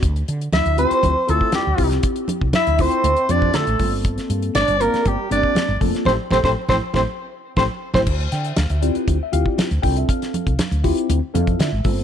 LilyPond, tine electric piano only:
\new Staff \with { instrumentName = "Tine electric piano" } { \time 4/4 \key d \minor \tempo 4 = 119 << { r1 | r1 | r1 | <e' g' a'>16 r16 <e' g' a'>16 <e' g' a'>16 r16 <e' g' a'>16 r16 <e' g' a'>16 r4 <e' g' a'>16 r8 <e' g' a'>16 |
r8 g''16 e''16 f''16 e''16 d''16 b'16 c''16 e''16 f''16 d''16 c''8 g''16 e''16 | f''2 r8 f''8 e''8 c''8 | } \\ { r4. <c' e' f' g'>8 r8 <c' e' f' a'>8 r8 <c' e' f' g'>8~ | <c' e' f' g'>4 r8 <c' e' f' a'>8 r8 <c' e' f' g'>8 r8 <bes c' f' a'>8~ | <bes c' f' a'>4 r8 <bes c' f' c''>8 r8 <bes c' f' g'>8 r8 <bes c' f' a'>8 | r1 |
r4. <c' e' f' g'>8 r8 <c' e' f' g'>8 r8 <c' d' f' a'>8~ | <c' d' f' a'>4 r8 <c' e' f' g'>8 r8 <c' e' f' a'>8 r8 <bes c' f' a'>8 | } >> }